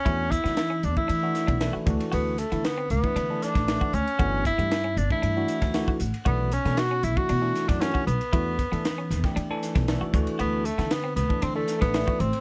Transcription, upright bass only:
X:1
M:4/4
L:1/16
Q:1/4=116
K:Bm
V:1 name="Upright bass" clef=bass
E,,3 E,3 E,, z E,2 z B,,,2 z D,, z | D,,3 D,3 D,, z D,2 z A,,,2 z D,, z | G,,,3 G,,3 G,,, z G,,2 z D,,2 z A,,, z | B,,,3 B,,3 B,,, z B,,2 z F,,2 z B,,, z |
E,,3 E,3 E,, z E,2 z B,,,2 z D,, z | D,,3 D,3 D,, z D,2 z A,,,2 z A,,, z |]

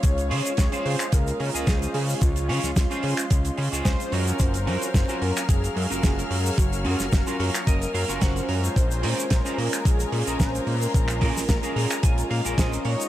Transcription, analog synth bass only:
X:1
M:4/4
L:1/16
Q:"Swing 16ths" 1/4=110
K:Gblyd
V:1 name="Analog synth bass" clef=bass
D,,2 D, z D,, z D, z D,, z D, D,, D,, z D, z | D,,2 D, D,, D,, z D, z D,, z D, D,, D,, z G,, z | G,,,2 G,, z G,,, z G,, z G,,, z G,, G,,, G,,, z G,, z | G,,,2 G,, G,,, G,,, z G,, z G,,, z G,, G,,, G,,, z G,, z |
B,,,2 B,, z B,,, z B,, z B,,, z B,, B,,, B,,, z B,, z | B,,,2 B,, B,,, B,,, z B,, z B,,, z B,, B,,, B,,, z B,, z |]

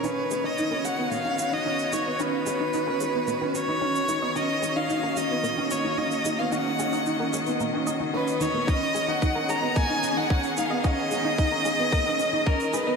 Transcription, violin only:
X:1
M:4/4
L:1/16
Q:1/4=111
K:Ebm
V:1 name="Violin"
c3 e3 g2 f3 e3 d2 | c8- c2 d6 | e3 f3 e4 d2 e3 f | g8 z4 c2 d2 |
e3 g3 b2 a3 g3 f2 | e12 B2 c2 |]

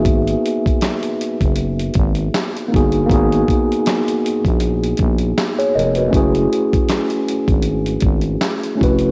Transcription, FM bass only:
X:1
M:4/4
L:1/16
Q:"Swing 16ths" 1/4=79
K:G#phr
V:1 name="FM bass" clef=bass
G,,,2 z4 z F,,,3 G,,,2 z2 =G,,,2 | G,,,2 z4 z ^A,,,3 A,,,2 z2 ^E,,,2 | F,,,2 z4 z G,,,3 G,,,2 z2 ^E,,,2 |]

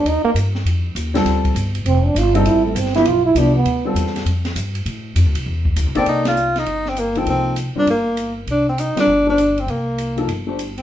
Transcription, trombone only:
X:1
M:4/4
L:1/8
Q:"Swing" 1/4=200
K:Cdor
V:1 name="Trombone"
E B, z6 | z4 C D F E | =E A, C E F E D =B,- | =B,2 z6 |
z8 | z8 | z8 | z8 |
z8 |]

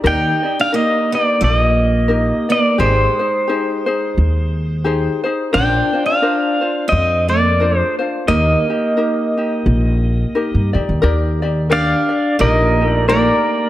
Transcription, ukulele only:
X:1
M:4/4
L:1/8
Q:"Swing" 1/4=87
K:Eb
V:1 name="Ukulele"
[EGBd] [EGd] [EGB] [EG]3 [EGB] [EGd] | [EGAc] [EAc] [EGAc] [EAc]3 [EGAc] [EAc] | [DFBc] [DFc] [DFBc] [Fc]3 [DFBc] [DFc] | [EGB] [EG] [EGB] [EG]3 [EGB] [EGd] |
[EGBd] [EGd] [GBd] [Gd] [EGB] [EG] [EGBd]2 |]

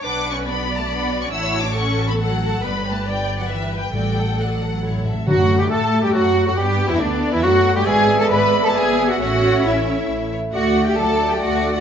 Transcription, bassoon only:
X:1
M:3/4
L:1/16
Q:1/4=137
K:F#phr
V:1 name="Bassoon" clef=bass
z12 | z12 | z12 | z12 |
F,3 G, A,3 G, F,3 F, | G,3 E, D,3 E, F,3 G, | B,12 | A,12- |
A,12 |]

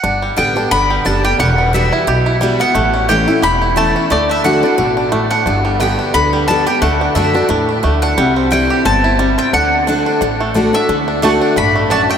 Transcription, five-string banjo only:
X:1
M:4/4
L:1/8
Q:"Swing" 1/4=177
K:G
V:1 name="Five-string banjo"
D G, B, D B, G, D G | G, B,2 E G E G, B, | A, ^C G E G E A, C | A, D D D D D A, D |
D G, B, D B, G, D G | A, D D D D D A, D | G, C E G C E G, C | D2 D D D A, D D |
D D A, D D A, D A, |]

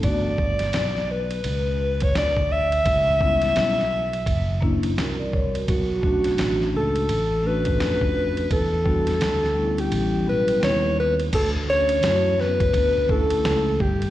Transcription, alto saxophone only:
X:1
M:4/4
L:1/16
Q:"Swing 16ths" 1/4=85
K:D
V:1 name="Alto saxophone"
d6 B4- B c d2 e2- | e8- e2 z6 | F6 A4 B6 | A6- A G3 B2 c2 B2 |
A2 c4 B4 A4 G2 |]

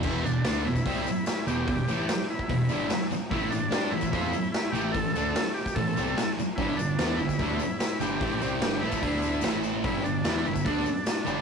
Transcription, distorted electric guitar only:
X:1
M:4/4
L:1/8
Q:1/4=147
K:Em
V:1 name="Distorted electric guitar" clef=bass
[E,,B,,E,] [E,,B,,] [D,A,D] [E,,B,,] [C,G,C] z2 [E,,B,,E,] | [E,,B,,] [A,,E,A,] z2 [E,,B,,] [G,,D,G,] z2 | [A,,E,A,] [A,,E,] [G,DG] [A,,E,] [=F,C=F] z2 [A,,E,A,] | [A,,E,] [D,A,D] z2 [A,,E,] [C,G,C] z2 |
[G,,D,G,] [G,,D,] [E,B,E] [G,,D,] [D,A,D] z2 [G,,D,G,] | [A,,E,A,] [C,G,C] [G,,D,G,] [A,,E,A,] [D,A,D]2 [A,,E,A,]2 | [G,,D,G,] [G,,D,] [E,B,E] [G,,D,] [D,A,D] z2 [G,,D,G,] |]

